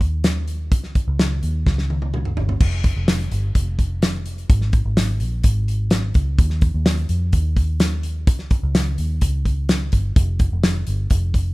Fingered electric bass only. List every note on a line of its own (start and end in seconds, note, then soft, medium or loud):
0.00 0.72 D#2 loud
0.72 1.05 C#2 loud
1.07 1.40 C#2 medium
1.43 1.65 D#2 medium
1.66 2.34 C#2 medium
2.37 2.59 G1 medium
2.61 2.94 F1 loud
2.96 3.29 F1 medium
3.31 3.53 G1 medium
3.55 4.46 F1 medium
4.50 4.83 G#1 loud
4.85 5.18 G#1 medium
5.20 5.42 A#1 medium
5.44 6.11 G#1 loud
6.15 6.37 C#2 medium
6.39 6.72 D#2 loud
6.74 7.07 D#2 medium
7.09 7.31 F2 medium
7.33 8.27 D#2 medium
8.27 8.60 C#2 loud
8.63 8.96 C#2 medium
8.98 9.20 D#2 medium
9.22 9.89 C#2 medium
9.93 10.15 G1 medium
10.16 10.49 F1 loud
10.52 10.85 F1 medium
10.87 11.09 G1 medium
11.11 11.54 F1 loud